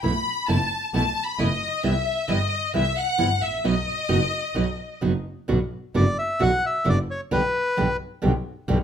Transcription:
0.03 0.22 B1 medium
0.03 0.12 B2 medium
0.03 0.12 E3 medium
0.03 0.12 A3 medium
0.03 0.12 B3 medium
0.03 0.12 E4 medium
0.03 0.45 B5 loud
0.48 0.68 F#1 loud
0.48 0.57 B2 medium
0.48 0.57 E3 medium
0.48 0.58 A3 medium
0.48 0.58 B3 medium
0.48 0.58 E4 medium
0.48 0.94 A5 loud
0.94 1.13 B1 medium
0.94 1.03 B2 medium
0.94 1.03 E3 medium
0.94 1.03 A3 medium
0.94 1.03 B3 medium
0.94 1.03 E4 medium
0.94 1.23 A5 loud
1.24 1.39 B5 medium
1.38 1.58 F#1 loud
1.38 1.47 B2 medium
1.38 1.48 E3 medium
1.38 1.48 A3 medium
1.38 1.48 B3 medium
1.38 1.48 E4 loud
1.38 1.84 D#5 loud
1.83 2.03 C2 medium
1.83 1.93 C3 medium
1.83 1.92 E3 medium
1.83 1.93 G3 medium
1.83 1.93 B3 medium
1.83 1.93 E4 medium
1.83 2.30 E5 loud
2.28 2.48 G1 loud
2.28 2.37 C3 medium
2.28 2.37 E3 medium
2.28 2.38 G3 medium
2.28 2.38 B3 loud
2.28 2.38 E4 medium
2.28 2.75 D#5 loud
2.74 2.94 C2 medium
2.74 2.83 C3 medium
2.74 2.83 E3 medium
2.74 2.83 G3 medium
2.74 2.83 B3 medium
2.74 2.83 E4 loud
2.74 2.96 E5 loud
2.97 3.42 F#5 loud
3.18 3.38 G1 loud
3.18 3.28 C3 medium
3.18 3.28 E3 medium
3.18 3.28 G3 medium
3.18 3.28 B3 medium
3.18 3.28 E4 loud
3.42 3.63 A1 medium
3.42 3.65 E5 loud
3.64 3.83 B1 medium
3.64 3.73 B2 medium
3.64 3.74 F#3 medium
3.64 3.73 B3 medium
3.64 3.74 D#4 loud
3.64 3.74 F#4 loud
3.64 5.04 D#5 loud
4.09 4.29 F#1 loud
4.09 4.18 B2 medium
4.09 4.18 F#3 medium
4.09 4.18 B3 medium
4.09 4.18 D#4 loud
4.09 4.19 F#4 medium
4.55 4.75 B1 loud
4.55 4.65 B2 medium
4.55 4.65 F#3 medium
4.55 4.65 B3 medium
4.55 4.65 D#4 medium
4.55 4.65 F#4 medium
5.01 5.23 F#1 loud
5.01 5.11 B2 medium
5.01 5.12 F#3 medium
5.01 5.12 B3 medium
5.01 5.12 D#4 medium
5.01 5.12 F#4 loud
5.48 5.69 B1 loud
5.48 5.58 B2 medium
5.48 5.58 D3 medium
5.48 5.58 B3 loud
5.48 5.58 D4 loud
5.48 5.58 F#4 medium
5.94 6.15 F#1 loud
5.94 6.04 B2 medium
5.94 6.04 D3 medium
5.94 6.04 B3 medium
5.94 6.04 D4 loud
5.94 6.04 F#4 loud
5.94 6.17 D5 loud
6.19 6.42 E5 loud
6.39 6.60 B1 loud
6.39 6.49 B2 medium
6.39 6.50 D3 medium
6.39 6.50 B3 medium
6.39 6.50 D4 medium
6.39 6.50 F#4 loud
6.39 6.65 F#5 loud
6.66 6.89 E5 loud
6.84 7.06 F#1 loud
6.84 6.95 B2 medium
6.84 6.95 D3 medium
6.84 6.95 B3 medium
6.84 6.95 D4 loud
6.84 6.95 F#4 loud
6.89 6.99 D5 loud
7.11 7.21 C#5 medium
7.31 7.51 B1 medium
7.31 7.41 B2 medium
7.31 7.41 D3 loud
7.31 7.41 G3 medium
7.31 7.41 B3 loud
7.31 7.41 G4 loud
7.31 7.97 B4 loud
7.77 7.97 B1 loud
7.77 7.86 B2 loud
7.77 7.87 D3 medium
7.77 7.87 G3 medium
7.77 7.87 B3 loud
7.77 7.87 G4 medium
8.22 8.42 B1 loud
8.22 8.31 B2 medium
8.22 8.31 D3 loud
8.22 8.31 G3 medium
8.22 8.31 B3 medium
8.22 8.32 G4 medium
8.68 8.84 B1 loud
8.68 8.77 B2 loud
8.68 8.77 D3 loud
8.68 8.77 G3 loud
8.68 8.77 B3 loud
8.68 8.77 G4 loud

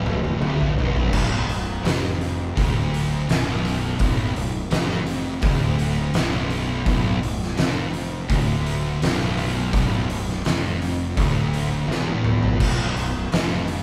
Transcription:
0.00 0.37 B0 medium
0.00 0.39 B1 loud
0.00 0.37 B4 medium
0.06 mid tom medium
0.24 mid tom medium
0.40 0.74 D1 loud
0.40 0.75 D2 loud
0.40 mid tom medium
0.60 floor tom medium
0.76 1.09 B0 medium
0.76 1.09 B1 loud
0.76 floor tom loud
0.96 floor tom loud
1.10 1.46 B0 medium
1.10 1.46 B1 loud
1.10 kick loud
1.10 crash loud
1.48 1.82 B0 medium
1.48 1.76 B1 medium
1.48 open hi-hat medium
1.83 2.52 F1 loud
1.83 2.54 F2 loud
1.83 snare loud
1.83 open hi-hat medium
2.21 open hi-hat medium
2.56 3.24 D1 medium
2.56 3.26 D2 loud
2.56 kick loud
2.56 open hi-hat medium
2.94 open hi-hat medium
3.29 3.96 B0 loud
3.29 3.97 B1 loud
3.29 snare loud
3.29 open hi-hat medium
3.65 open hi-hat medium
3.99 4.33 B0 medium
3.99 4.34 B1 medium
3.99 kick loud
3.99 open hi-hat medium
4.35 4.69 B0 medium
4.35 4.64 B1 medium
4.35 open hi-hat medium
4.70 5.39 F1 loud
4.70 5.42 F2 loud
4.70 snare loud
4.70 open hi-hat medium
4.90 snare soft
5.07 open hi-hat medium
5.42 6.11 D1 loud
5.42 6.13 D2 loud
5.42 kick loud
5.42 open hi-hat medium
5.79 open hi-hat medium
6.14 6.82 B0 loud
6.14 6.85 B1 loud
6.14 snare loud
6.14 open hi-hat medium
6.50 open hi-hat medium
6.86 7.20 B0 medium
6.86 7.20 B1 medium
6.86 kick loud
6.86 open hi-hat medium
7.21 7.56 B0 medium
7.21 7.50 B1 medium
7.21 open hi-hat medium
7.43 snare soft
7.57 8.26 F1 loud
7.57 8.28 F2 loud
7.57 snare loud
7.57 open hi-hat medium
7.94 open hi-hat medium
8.29 8.97 D1 medium
8.29 9.00 D2 loud
8.29 kick loud
8.29 open hi-hat medium
8.66 open hi-hat medium
9.02 9.69 B0 loud
9.02 9.72 B1 loud
9.02 snare loud
9.02 open hi-hat loud
9.38 open hi-hat medium
9.73 10.07 B0 loud
9.73 10.08 B1 loud
9.73 kick loud
9.73 open hi-hat medium
10.09 10.42 B0 medium
10.09 10.38 B1 medium
10.09 open hi-hat medium
10.29 snare soft
10.45 11.13 F1 loud
10.45 11.16 F2 loud
10.45 snare loud
10.45 open hi-hat medium
10.82 open hi-hat medium
11.17 11.85 D1 medium
11.17 11.87 D2 loud
11.17 kick loud
11.17 open hi-hat medium
11.53 open hi-hat medium
11.87 12.56 E1 loud
11.87 12.59 E2 loud
11.87 snare medium
12.08 high tom medium
12.24 mid tom loud
12.43 floor tom loud
12.59 12.93 B0 medium
12.59 12.94 B1 loud
12.59 kick loud
12.59 crash loud
12.96 13.29 B0 medium
12.96 13.24 B1 medium
12.96 open hi-hat medium
13.31 13.83 F1 loud
13.31 13.83 F2 loud
13.31 snare loud
13.31 open hi-hat medium
13.68 open hi-hat medium

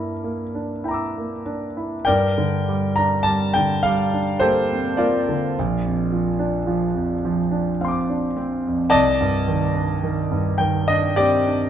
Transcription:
0.00 2.01 G2 soft
0.00 0.10 A#3 soft
0.00 0.55 D4 soft
0.00 0.84 E4 soft
0.00 1.43 A#4 medium
0.24 0.72 A#3 soft
0.55 1.02 D4 soft
0.84 1.32 E4 soft
0.84 2.02 G5 soft
0.88 2.04 A#5 soft
0.88 2.05 D6 soft
0.94 2.07 E6 soft
1.18 1.65 A#3 soft
1.46 1.94 D4 soft
1.77 2.06 E4 soft
2.05 5.54 G2 medium
2.05 2.91 A#4 medium
2.05 2.91 D5 medium
2.05 2.94 G5 medium
2.38 2.84 D3 soft
2.69 3.14 G3 soft
2.96 3.43 D4 soft
2.96 3.25 A#5 medium
3.23 3.72 G3 soft
3.23 3.53 A5 loud
3.54 4.01 D3 soft
3.54 3.83 G5 medium
3.83 4.31 G3 soft
3.83 4.41 F5 medium
4.13 4.60 D4 soft
4.39 4.88 A#3 soft
4.39 4.95 G4 medium
4.39 4.95 A4 medium
4.39 4.99 C5 medium
4.73 5.01 C4 soft
4.97 5.46 A#3 soft
4.97 8.33 F4 medium
4.97 8.33 A#4 soft
4.97 8.36 D5 medium
5.29 5.57 D3 soft
5.59 8.90 A#1 medium
5.85 6.29 F2 soft
6.12 6.57 F3 soft
6.39 6.84 D4 soft
6.67 7.12 F3 soft
6.94 7.40 F2 soft
7.25 7.70 F3 soft
7.51 7.98 D4 soft
7.81 8.26 C4 soft
7.81 8.89 F5 soft
7.81 8.91 C6 soft
7.88 7.90 D6 soft
7.88 8.94 D6 soft
8.09 8.37 D4 soft
8.37 8.82 C4 soft
8.67 8.94 F2 soft
8.90 11.70 C2 medium
8.90 10.55 D5 medium
8.90 10.55 D#5 medium
8.90 10.59 A5 loud
9.21 9.65 G2 soft
9.48 9.92 D#3 soft
9.75 10.21 D4 soft
10.03 10.49 D#3 soft
10.31 10.77 G2 soft
10.58 11.05 D#3 medium
10.58 10.87 G5 medium
10.88 11.34 D4 soft
10.88 11.16 D#5 medium
11.16 11.62 C4 soft
11.16 11.69 G4 medium
11.16 11.70 D5 medium
11.47 11.70 D4 soft

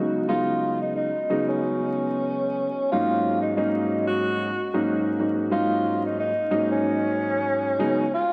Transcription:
0.00 0.27 C#3 medium
0.00 0.27 F#3 medium
0.00 0.27 G#3 medium
0.00 0.27 B3 medium
0.00 0.27 D#4 medium
0.28 1.06 C#3 medium
0.28 1.06 F#3 medium
0.28 1.07 G#3 medium
0.28 1.07 B3 medium
0.28 1.07 D#4 loud
0.28 0.79 F4 loud
0.81 0.94 D#4 medium
0.96 1.45 D#4 medium
1.30 2.65 C#3 loud
1.30 2.65 F#3 medium
1.30 2.65 G#3 medium
1.30 2.65 B3 medium
1.30 2.65 D#4 loud
1.48 2.88 C#4 medium
2.92 3.53 G#2 medium
2.92 3.53 F#3 medium
2.92 3.53 A#3 medium
2.92 3.53 C#4 medium
2.92 3.53 D#4 loud
2.92 3.41 F4 loud
3.42 3.54 D#4 medium
3.56 4.48 G#2 loud
3.56 4.48 F#3 medium
3.56 4.49 A#3 medium
3.56 4.49 C#4 medium
3.56 4.05 D#4 medium
3.56 4.49 D#4 loud
4.08 4.82 F#4 medium
4.74 5.16 G#2 medium
4.74 5.17 F#3 medium
4.74 5.17 A#3 medium
4.74 5.17 C#4 medium
4.74 5.17 D#4 loud
5.19 5.50 G#2 medium
5.19 5.50 F#3 medium
5.19 5.50 A#3 medium
5.19 5.50 C#4 medium
5.19 5.50 D#4 medium
5.51 6.29 G#2 medium
5.51 6.29 F#3 medium
5.51 6.29 A#3 medium
5.51 6.29 C#4 medium
5.51 6.29 D#4 loud
5.51 6.01 F4 loud
6.06 6.17 D#4 medium
6.20 6.68 D#4 medium
6.51 7.81 G#2 loud
6.51 7.78 F#3 medium
6.51 7.81 A#3 medium
6.51 7.81 C#4 medium
6.51 7.78 D#4 loud
6.72 8.10 C#4 medium
7.79 8.02 C#3 loud
7.79 8.02 F#3 medium
7.79 8.03 G#3 medium
7.79 8.03 B3 medium
7.79 8.03 D#4 loud
8.14 8.33 F4 loud

